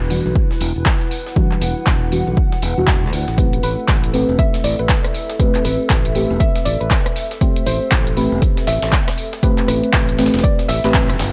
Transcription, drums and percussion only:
0.10 open hi-hat medium
0.10 tambourine medium
0.35 kick loud
0.35 tambourine medium
0.51 snare soft
0.61 open hi-hat loud
0.61 tambourine medium
0.86 kick loud
0.86 snare loud
0.86 clap loud
0.86 tambourine medium
1.01 closed hi-hat soft
1.11 open hi-hat medium
1.11 tambourine medium
1.26 snare soft
1.36 kick loud
1.36 tambourine medium
1.51 clap soft
1.62 snare soft
1.62 open hi-hat loud
1.62 tambourine medium
1.86 kick loud
1.86 snare loud
1.86 clap loud
1.86 tambourine medium
2.12 open hi-hat medium
2.12 tambourine medium
2.37 kick loud
2.37 tambourine medium
2.52 snare soft
2.62 open hi-hat loud
2.62 tambourine medium
2.87 kick loud
2.87 snare loud
2.87 clap loud
2.87 tambourine medium
3.13 open hi-hat medium
3.28 snare soft
3.38 kick loud
3.38 closed hi-hat medium
3.38 tambourine medium
3.38 shaker soft
3.53 closed hi-hat soft
3.53 shaker soft
3.63 open hi-hat loud
3.63 tambourine medium
3.63 shaker medium
3.79 shaker soft
3.88 kick loud
3.88 snare loud
3.88 clap loud
3.88 closed hi-hat medium
3.88 tambourine medium
3.88 shaker soft
4.04 closed hi-hat soft
4.04 shaker soft
4.14 open hi-hat medium
4.14 tambourine medium
4.14 shaker medium
4.29 shaker soft
4.39 kick loud
4.39 closed hi-hat medium
4.39 tambourine medium
4.39 shaker soft
4.54 snare soft
4.54 closed hi-hat soft
4.54 shaker soft
4.64 open hi-hat loud
4.64 tambourine medium
4.64 shaker medium
4.79 closed hi-hat soft
4.79 shaker soft
4.89 kick loud
4.89 snare loud
4.89 clap loud
4.89 closed hi-hat medium
4.89 tambourine medium
4.89 shaker soft
5.05 cross-stick medium
5.05 closed hi-hat soft
5.05 shaker soft
5.14 open hi-hat medium
5.14 tambourine medium
5.14 shaker medium
5.30 snare medium
5.30 closed hi-hat soft
5.30 shaker soft
5.40 kick loud
5.40 closed hi-hat medium
5.40 tambourine medium
5.40 shaker soft
5.55 clap soft
5.55 closed hi-hat medium
5.55 shaker soft
5.65 snare soft
5.65 open hi-hat loud
5.65 tambourine medium
5.65 shaker medium
5.81 shaker soft
5.90 kick loud
5.90 snare loud
5.90 clap loud
5.90 closed hi-hat medium
5.90 tambourine medium
5.90 shaker soft
6.05 closed hi-hat soft
6.05 shaker soft
6.15 open hi-hat medium
6.15 tambourine medium
6.15 shaker medium
6.31 shaker soft
6.40 kick loud
6.40 closed hi-hat medium
6.40 tambourine medium
6.40 shaker soft
6.56 snare soft
6.56 closed hi-hat medium
6.56 shaker soft
6.65 open hi-hat loud
6.65 tambourine medium
6.65 shaker medium
6.81 closed hi-hat soft
6.81 shaker soft
6.91 kick loud
6.91 snare loud
6.91 clap loud
6.91 closed hi-hat medium
6.91 tambourine medium
6.91 shaker soft
7.06 cross-stick medium
7.06 closed hi-hat soft
7.06 shaker soft
7.16 open hi-hat medium
7.16 shaker medium
7.31 snare soft
7.31 closed hi-hat soft
7.31 shaker soft
7.41 kick loud
7.41 closed hi-hat medium
7.41 tambourine medium
7.41 shaker soft
7.56 closed hi-hat medium
7.56 closed hi-hat soft
7.56 shaker soft
7.66 open hi-hat loud
7.66 tambourine medium
7.66 shaker medium
7.82 shaker soft
7.91 kick loud
7.91 snare loud
7.91 clap loud
7.91 closed hi-hat medium
7.91 tambourine medium
7.91 shaker soft
8.07 closed hi-hat medium
8.07 shaker soft
8.17 open hi-hat medium
8.17 tambourine medium
8.17 shaker medium
8.33 shaker soft
8.42 kick loud
8.42 closed hi-hat medium
8.42 tambourine medium
8.42 shaker soft
8.57 snare soft
8.57 closed hi-hat medium
8.57 shaker soft
8.67 snare loud
8.67 open hi-hat loud
8.67 tambourine medium
8.67 shaker medium
8.82 snare loud
8.82 closed hi-hat soft
8.82 tambourine medium
8.82 shaker soft
8.92 kick loud
8.92 snare loud
8.92 clap loud
8.92 closed hi-hat medium
8.92 tambourine medium
8.92 shaker soft
9.08 cross-stick medium
9.08 snare loud
9.08 closed hi-hat medium
9.08 tambourine medium
9.08 shaker soft
9.18 open hi-hat medium
9.18 tambourine medium
9.18 shaker medium
9.33 snare medium
9.33 closed hi-hat soft
9.33 shaker soft
9.43 kick loud
9.43 closed hi-hat medium
9.43 tambourine medium
9.43 shaker soft
9.58 clap soft
9.58 closed hi-hat medium
9.58 shaker soft
9.68 cross-stick medium
9.68 snare soft
9.68 open hi-hat loud
9.68 tambourine medium
9.68 shaker medium
9.83 closed hi-hat soft
9.83 shaker soft
9.93 kick loud
9.93 snare loud
9.93 clap loud
9.93 closed hi-hat medium
9.93 tambourine medium
9.93 shaker soft
10.09 closed hi-hat medium
10.09 shaker soft
10.19 snare medium
10.19 open hi-hat medium
10.19 tambourine medium
10.19 shaker medium
10.26 snare medium
10.26 tambourine medium
10.34 snare medium
10.34 closed hi-hat soft
10.34 tambourine medium
10.34 shaker soft
10.39 snare medium
10.39 tambourine medium
10.44 kick loud
10.44 closed hi-hat medium
10.44 tambourine medium
10.44 shaker soft
10.59 snare soft
10.59 closed hi-hat medium
10.59 shaker soft
10.69 snare loud
10.69 open hi-hat loud
10.69 tambourine medium
10.69 shaker medium
10.84 snare loud
10.84 closed hi-hat soft
10.84 tambourine medium
10.84 shaker soft
10.94 kick loud
10.94 snare loud
10.94 clap loud
10.94 closed hi-hat medium
10.94 tambourine medium
10.94 shaker soft
11.09 cross-stick medium
11.09 closed hi-hat medium
11.09 shaker soft
11.19 snare loud
11.19 open hi-hat medium
11.19 tambourine medium
11.19 shaker medium

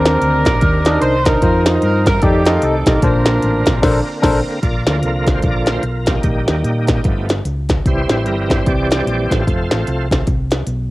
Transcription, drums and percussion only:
0.06 snare loud
0.06 closed hi-hat medium
0.22 closed hi-hat medium
0.45 kick loud
0.45 snare loud
0.45 closed hi-hat medium
0.61 kick loud
0.61 closed hi-hat medium
0.85 snare loud
0.85 closed hi-hat medium
1.01 closed hi-hat loud
1.25 kick loud
1.25 snare loud
1.25 closed hi-hat medium
1.42 kick medium
1.42 closed hi-hat loud
1.66 snare loud
1.66 closed hi-hat medium
1.82 closed hi-hat medium
2.06 kick medium
2.06 snare loud
2.06 closed hi-hat medium
2.22 kick loud
2.22 closed hi-hat loud
2.45 snare loud
2.45 closed hi-hat medium
2.62 closed hi-hat loud
2.86 kick medium
2.86 snare loud
2.86 closed hi-hat medium
3.02 kick loud
3.02 closed hi-hat loud
3.25 snare loud
3.25 closed hi-hat medium
3.42 closed hi-hat medium
3.66 kick loud
3.66 snare loud
3.66 closed hi-hat medium
3.83 kick loud
3.83 snare loud
3.83 crash medium
4.23 kick loud
4.23 snare loud
4.23 crash medium
4.63 kick medium
4.63 closed hi-hat medium
4.87 snare loud
4.87 closed hi-hat medium
5.03 closed hi-hat medium
5.27 kick medium
5.27 snare loud
5.27 closed hi-hat medium
5.43 kick loud
5.43 closed hi-hat medium
5.66 snare loud
5.66 closed hi-hat medium
5.83 closed hi-hat medium
6.06 kick medium
6.06 snare loud
6.06 closed hi-hat medium
6.23 kick medium
6.23 closed hi-hat medium
6.48 snare loud
6.48 closed hi-hat medium
6.64 closed hi-hat medium
6.87 kick medium
6.87 snare loud
6.87 closed hi-hat medium
7.04 kick loud
7.04 closed hi-hat medium
7.29 snare loud
7.29 closed hi-hat medium
7.45 closed hi-hat medium
7.69 kick medium
7.69 snare loud
7.69 closed hi-hat medium
7.86 kick medium
7.86 closed hi-hat medium
8.09 snare loud
8.09 closed hi-hat medium
8.26 closed hi-hat medium
8.50 kick medium
8.50 snare loud
8.50 closed hi-hat medium
8.66 kick loud
8.66 closed hi-hat medium
8.91 snare loud
8.91 closed hi-hat medium
9.07 closed hi-hat medium
9.31 kick medium
9.31 snare medium
9.31 closed hi-hat medium
9.47 kick medium
9.47 closed hi-hat medium
9.71 snare loud
9.71 closed hi-hat medium
9.87 closed hi-hat medium
10.11 kick medium
10.11 snare loud
10.11 closed hi-hat medium
10.27 kick medium
10.27 closed hi-hat medium
10.51 snare loud
10.51 closed hi-hat medium
10.67 closed hi-hat medium

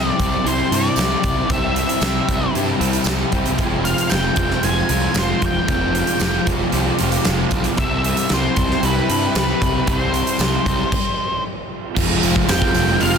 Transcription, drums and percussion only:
0.20 kick medium
0.20 closed hi-hat medium
0.46 closed hi-hat medium
0.72 closed hi-hat medium
0.96 snare loud
0.96 closed hi-hat medium
0.96 tambourine medium
1.24 kick medium
1.24 closed hi-hat medium
1.50 kick loud
1.50 closed hi-hat medium
1.76 closed hi-hat medium
1.89 closed hi-hat medium
2.01 snare loud
2.01 closed hi-hat medium
2.01 tambourine medium
2.29 kick medium
2.29 closed hi-hat medium
2.55 closed hi-hat medium
2.81 closed hi-hat medium
2.93 closed hi-hat medium
3.04 snare loud
3.04 closed hi-hat medium
3.04 tambourine medium
3.32 kick medium
3.32 closed hi-hat medium
3.46 closed hi-hat medium
3.58 kick loud
3.58 closed hi-hat medium
3.85 closed hi-hat medium
3.98 closed hi-hat medium
4.09 snare loud
4.09 closed hi-hat medium
4.09 tambourine medium
4.36 kick medium
4.36 closed hi-hat medium
4.50 snare soft
4.63 closed hi-hat medium
4.89 closed hi-hat medium
5.14 snare loud
5.14 closed hi-hat medium
5.14 tambourine medium
5.42 kick medium
5.42 closed hi-hat medium
5.68 kick loud
5.68 closed hi-hat medium
5.95 closed hi-hat medium
6.07 closed hi-hat medium
6.20 snare loud
6.20 closed hi-hat medium
6.20 tambourine medium
6.47 kick medium
6.47 closed hi-hat medium
6.72 closed hi-hat medium
6.99 closed hi-hat medium
7.12 closed hi-hat medium
7.25 snare loud
7.25 closed hi-hat medium
7.25 tambourine medium
7.51 kick medium
7.51 closed hi-hat medium
7.64 closed hi-hat medium
7.77 kick loud
7.77 closed hi-hat medium
8.04 closed hi-hat medium
8.17 closed hi-hat medium
8.29 snare loud
8.29 closed hi-hat medium
8.29 tambourine medium
8.56 kick medium
8.56 closed hi-hat medium
8.71 snare soft
8.83 closed hi-hat medium
9.10 closed hi-hat medium
9.35 snare loud
9.35 closed hi-hat medium
9.35 tambourine medium
9.62 kick medium
9.62 closed hi-hat medium
9.87 kick loud
9.87 closed hi-hat medium
10.14 closed hi-hat medium
10.27 closed hi-hat medium
10.39 snare loud
10.39 closed hi-hat medium
10.39 tambourine medium
10.66 kick medium
10.66 closed hi-hat medium
10.92 kick loud
10.92 crash loud
11.97 kick loud
11.97 crash loud
11.97 tambourine soft
12.23 open hi-hat medium
12.23 tambourine medium
12.36 kick medium
12.49 snare loud
12.49 open hi-hat medium
12.49 tambourine medium
12.62 kick medium
12.74 open hi-hat medium
12.74 tambourine medium
12.88 tambourine soft
13.00 open hi-hat medium
13.00 tambourine soft

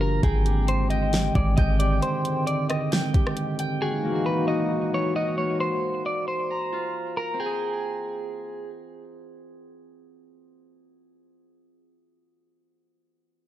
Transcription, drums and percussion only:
0.23 kick loud
0.23 closed hi-hat medium
0.46 closed hi-hat medium
0.68 closed hi-hat medium
0.90 closed hi-hat medium
1.13 snare loud
1.13 closed hi-hat medium
1.35 kick medium
1.35 closed hi-hat medium
1.58 kick loud
1.58 closed hi-hat medium
1.80 closed hi-hat medium
2.02 closed hi-hat medium
2.25 closed hi-hat medium
2.47 closed hi-hat medium
2.70 cross-stick medium
2.70 closed hi-hat medium
2.92 snare loud
2.92 closed hi-hat medium
3.14 kick medium
3.14 closed hi-hat medium
3.27 cross-stick medium
3.37 closed hi-hat medium
3.59 closed hi-hat medium

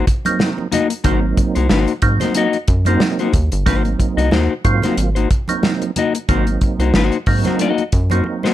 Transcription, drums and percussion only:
0.07 kick medium
0.07 closed hi-hat medium
0.25 closed hi-hat medium
0.25 high conga medium
0.39 snare loud
0.39 high conga medium
0.58 muted conga soft
0.72 closed hi-hat medium
0.72 high conga medium
0.72 low conga medium
0.90 closed hi-hat medium
1.04 kick loud
1.04 closed hi-hat loud
1.04 muted conga soft
1.04 low conga medium
1.37 kick medium
1.37 closed hi-hat medium
1.55 closed hi-hat soft
1.70 snare loud
1.70 high conga medium
1.87 closed hi-hat soft
1.87 muted conga soft
2.02 kick medium
2.02 closed hi-hat medium
2.20 snare soft
2.20 closed hi-hat medium
2.20 high conga medium
2.20 low conga medium
2.34 closed hi-hat loud
2.34 muted conga soft
2.53 closed hi-hat soft
2.53 muted conga soft
2.68 kick medium
2.68 closed hi-hat medium
2.85 closed hi-hat medium
2.85 high conga medium
3.00 snare loud
3.00 muted conga soft
3.00 high conga medium
3.19 closed hi-hat soft
3.33 kick medium
3.33 closed hi-hat medium
3.33 high conga medium
3.33 low conga medium
3.52 closed hi-hat medium
3.66 kick loud
3.66 closed hi-hat loud
3.66 low conga medium
3.85 closed hi-hat soft
3.85 muted conga soft
4.00 kick medium
4.00 closed hi-hat medium
4.18 closed hi-hat soft
4.31 snare loud
4.31 muted conga soft
4.31 high conga medium
4.65 kick medium
4.65 closed hi-hat medium
4.82 snare soft
4.82 closed hi-hat medium
4.82 high conga medium
4.82 low conga medium
4.97 closed hi-hat medium
5.16 closed hi-hat soft
5.31 kick loud
5.31 closed hi-hat medium
5.48 closed hi-hat medium
5.48 high conga medium
5.63 snare loud
5.63 muted conga soft
5.63 high conga medium
5.82 closed hi-hat soft
5.82 muted conga soft
5.96 closed hi-hat medium
5.96 high conga medium
5.96 low conga medium
6.15 closed hi-hat medium
6.29 kick loud
6.29 closed hi-hat loud
6.29 low conga medium
6.47 closed hi-hat soft
6.61 kick medium
6.61 closed hi-hat medium
6.80 closed hi-hat soft
6.94 snare loud
6.94 high conga medium
7.12 closed hi-hat soft
7.12 muted conga soft
7.26 kick medium
7.26 open hi-hat medium
7.45 snare soft
7.45 closed hi-hat medium
7.45 high conga medium
7.45 low conga medium
7.59 closed hi-hat medium
7.78 closed hi-hat soft
7.78 muted conga soft
7.92 kick medium
7.92 closed hi-hat medium
8.10 closed hi-hat medium
8.10 high conga medium
8.24 high conga medium
8.43 snare medium
8.43 muted conga soft

